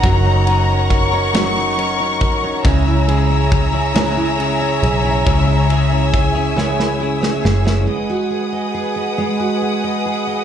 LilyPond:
<<
  \new Staff \with { instrumentName = "Violin section" } { \time 6/8 \key gis \minor \tempo 4. = 46 ais''4 cis'''2 | ais''2.~ | ais''4 gis''4. r8 | r2. | }
  \new Staff \with { instrumentName = "String section" } { \time 6/8 \key gis \minor <cis'' fis'' ais'' cis'''>2. | <cis'' e'' gis'' e'''>2.~ | <cis'' e'' gis'' e'''>2. | <b' fis'' gis'' dis'''>2. | }
  \new Staff \with { instrumentName = "Steel-string acoustic guitar" } { \time 6/8 \key gis \minor <fis dis' ais' cis''>16 dis'16 ais'16 cis''16 ais'16 cis''16 <fis cis''>16 dis'16 ais'16 cis''16 ais'16 cis''16 | <cis cis''>16 e'16 gis'16 cis''16 gis'16 cis''16 <cis cis''>16 e'16 gis'16 cis''16 gis'16 cis''16 | <cis cis''>16 e'16 gis'16 cis''16 gis'16 cis''16 <cis cis''>16 e'16 gis'16 cis''16 gis'16 cis''16 | <gis dis''>16 fis'16 gis'16 dis''16 gis'16 dis''16 <gis dis''>16 fis'16 gis'16 dis''16 gis'16 dis''16 | }
  \new Staff \with { instrumentName = "Clean electric guitar" } { \time 6/8 \key gis \minor <fis cis' dis' ais'>8 <fis cis' dis' ais'>16 <cis' dis' ais'>8 <cis' dis' ais'>16 <fis cis' dis' ais'>8 <fis cis' dis' ais'>16 <cis' dis' ais'>8 <cis' dis' ais'>16 | <cis gis cis' e' gis'>8 <gis cis' e' gis'>16 <cis' e' gis'>8 <cis' e' gis'>16 <cis gis cis' e' gis'>8 <gis cis' e' gis'>16 <cis' e' gis'>8 <cis' e' gis'>16 | <cis gis cis' e' gis'>8 <gis cis' e' gis'>16 <cis' e' gis'>8 <cis' e' gis'>16 <cis gis cis' e' gis'>8 <gis cis' e' gis'>16 <cis' e' gis'>8 <cis' e' gis'>16 | r2. | }
  \new Staff \with { instrumentName = "Fingered electric bass" } { \clef bass \time 6/8 \key gis \minor fis,,2~ fis,,8 b,,8 | cis,2~ cis,8 b,,8 | cis,2~ cis,8 fis,,8 | r2. | }
  \new DrumStaff \with { instrumentName = "Drums" } \drummode { \time 6/8 <bd cymr>8 cymr8 <bd cymr>8 <cymr sn>8 cymr8 <bd cymr>8 | <bd cymr>8 cymr8 <bd cymr>8 <cymr sn>8 cymr8 cymr8 | <bd cymr>8 cymr8 <bd cymr>8 sn16 sn8 sn16 sn16 sn16 | r4. r4. | }
>>